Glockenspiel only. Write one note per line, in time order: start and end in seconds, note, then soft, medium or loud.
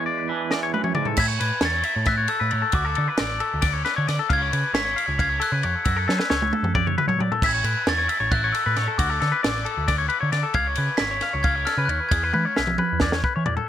1.20 1.65 G#6 loud
1.65 2.10 A6 loud
2.08 2.31 F#6 loud
2.29 2.75 E6 loud
2.75 3.21 D6 medium
4.33 4.77 G#6 loud
4.75 5.21 B6 loud
5.21 5.30 G#6 loud
5.43 5.88 F#6 loud
5.85 6.32 E6 medium
7.46 7.90 G#6 loud
7.89 8.34 A6 loud
8.31 8.42 F#6 loud
8.52 8.99 E6 medium
8.98 9.45 D6 medium
10.55 11.01 G#6 loud
10.97 11.45 B6 loud
11.43 11.67 G#6 loud
11.65 11.87 F6 medium
11.85 12.11 F#6 medium
12.09 13.18 G#6 medium